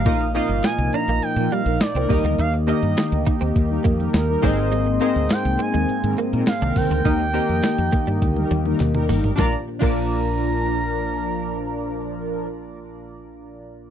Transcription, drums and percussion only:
0.06 kick, closed hi-hat
0.35 closed hi-hat
0.64 snare, clap, closed hi-hat, tambourine
0.93 closed hi-hat
1.22 closed hi-hat
1.52 closed hi-hat
1.66 closed hi-hat
1.81 snare, clap, closed hi-hat, tambourine
2.10 kick, open hi-hat
2.40 closed hi-hat
2.69 closed hi-hat
2.97 snare, clap, closed hi-hat, tambourine
3.26 kick, closed hi-hat
3.56 kick, closed hi-hat
3.85 kick, closed hi-hat
4.00 closed hi-hat
4.14 snare, clap, closed hi-hat, tambourine
4.43 kick, open hi-hat
4.72 closed hi-hat
5.02 closed hi-hat
5.30 snare, clap, closed hi-hat, tambourine
5.60 closed hi-hat
5.89 closed hi-hat
6.18 closed hi-hat
6.33 closed hi-hat
6.47 snare, clap, closed hi-hat, tambourine
6.76 kick, open hi-hat
7.05 kick, closed hi-hat
7.35 closed hi-hat
7.63 snare, clap, closed hi-hat, tambourine
7.78 closed hi-hat
7.93 kick, closed hi-hat
8.22 kick, closed hi-hat, high tom
8.36 high tom
8.51 closed hi-hat, mid tom
8.65 mid tom
8.80 clap, closed hi-hat, mid tom
8.95 mid tom
9.09 floor tom, open hi-hat
9.24 floor tom
9.38 kick, snare, clap
9.82 kick, clap, crash

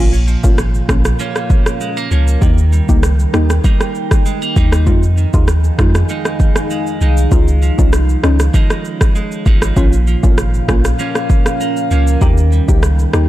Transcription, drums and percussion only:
0.13 shaker
0.28 shaker
0.44 kick, shaker
0.58 cross-stick, shaker
0.75 shaker
0.89 kick, cross-stick, shaker
1.05 cross-stick, shaker
1.19 shaker
1.36 cross-stick, shaker
1.50 kick, shaker
1.66 cross-stick, shaker
1.81 shaker
1.97 shaker
2.11 shaker
2.28 shaker
2.42 kick, shaker
2.58 shaker
2.73 shaker
2.89 kick, shaker
3.03 cross-stick, shaker
3.19 shaker
3.34 cross-stick, shaker
3.50 cross-stick, shaker
3.64 kick, shaker
3.81 cross-stick, shaker
3.95 shaker
4.11 kick, cross-stick, shaker
4.26 shaker
4.42 shaker
4.56 kick, shaker
4.72 cross-stick, shaker
4.87 kick, shaker
5.03 shaker
5.17 shaker
5.34 kick, shaker
5.48 cross-stick, shaker
5.64 shaker
5.79 kick, cross-stick, shaker
5.95 cross-stick, shaker
6.09 shaker
6.25 cross-stick, shaker
6.40 kick, shaker
6.56 cross-stick, shaker
6.70 shaker
6.87 shaker
7.01 shaker
7.17 shaker
7.32 kick, shaker
7.48 shaker
7.62 shaker
7.79 kick, shaker
7.93 cross-stick, shaker
8.09 shaker
8.24 cross-stick, shaker
8.40 cross-stick, shaker
8.54 kick, shaker
8.70 cross-stick, shaker
8.85 shaker
9.01 kick, cross-stick, shaker
9.16 shaker
9.32 shaker
9.46 kick, shaker
9.62 cross-stick, shaker
9.77 kick, shaker
9.93 shaker
10.07 shaker
10.23 kick, shaker
10.38 cross-stick, shaker
10.54 shaker
10.68 kick, cross-stick, shaker
10.85 cross-stick, shaker
10.99 shaker
11.15 cross-stick, shaker
11.30 kick, shaker
11.46 cross-stick, shaker
11.61 shaker
11.77 shaker
11.91 shaker
12.07 shaker
12.21 kick, shaker
12.38 shaker
12.52 shaker
12.69 kick, shaker
12.83 cross-stick, shaker
12.99 shaker
13.13 cross-stick, shaker

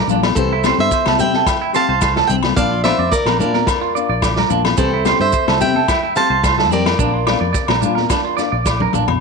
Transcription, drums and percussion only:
0.09 low conga, maracas
0.23 snare, high conga, low agogo
0.36 kick, maracas
0.64 snare, high conga, low agogo, maracas
0.78 high conga
0.91 kick, snare, maracas
1.06 snare, high conga, low agogo
1.19 low conga, maracas
1.33 snare, high conga
1.46 kick, snare, low agogo, maracas
1.74 snare, maracas
2.01 kick, snare, low agogo, maracas
2.16 snare, low conga
2.30 low conga, maracas
2.43 snare, high conga, low agogo
2.57 kick, maracas
2.84 snare, high conga, low agogo, maracas
3.00 high conga
3.12 kick, snare, maracas
3.26 snare, high conga, low agogo
3.40 low conga, maracas
3.53 snare, high conga
3.67 kick, snare, low agogo, maracas
3.97 maracas
4.22 kick, snare, low agogo, maracas
4.36 snare, low conga
4.50 low conga, maracas
4.65 snare, high conga, low agogo
4.77 kick, maracas
5.05 snare, high conga, low agogo, maracas
5.20 high conga
5.32 kick, maracas
5.48 snare, high conga, low agogo
5.61 low conga, maracas
5.74 high conga
5.88 kick, snare, low agogo, maracas
6.16 snare, maracas
6.44 kick, snare, low agogo, maracas
6.58 snare, low conga
6.71 low conga, maracas
6.86 snare, high conga, low agogo
6.99 kick, maracas
7.27 snare, high conga, low agogo
7.41 high conga
7.54 kick, snare, maracas
7.68 snare, high conga, low agogo
7.82 low conga, maracas
7.97 snare, high conga
8.10 kick, snare, low agogo, maracas
8.38 snare, maracas
8.66 kick, snare, low agogo, maracas
8.80 high tom, low conga
8.93 mid tom, low conga, maracas
9.08 floor tom, high conga, low agogo

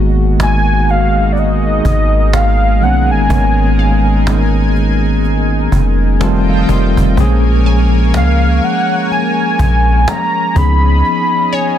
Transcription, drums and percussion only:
0.40 cajon slap
0.88 cajon slap
1.37 cajon slap
1.85 cajon bass
2.33 cajon slap
2.82 cajon slap
3.30 cajon bass
3.79 cajon slap
4.27 cajon slap
4.75 cajon slap
5.24 cajon slap
5.72 cajon bass
6.21 cajon slap
6.69 cajon bass
6.97 cajon bass
7.17 cajon bass
7.66 cajon slap
8.14 cajon slap
8.63 cajon slap
9.11 cajon slap
9.59 cajon bass
10.08 cajon slap
10.56 cajon bass
11.04 cajon slap
11.53 cajon slap

